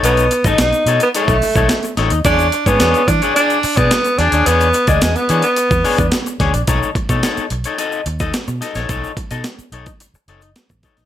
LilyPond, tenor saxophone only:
\new Staff \with { instrumentName = "Tenor saxophone" } { \time 4/4 \key b \mixolydian \tempo 4 = 108 b8. dis'16 dis'8. b16 a4. r8 | d'8. b8. d'8 d'8. b8. d'8 | b8. gis16 gis16 b8 b4.~ b16 r8 | r1 |
r1 | }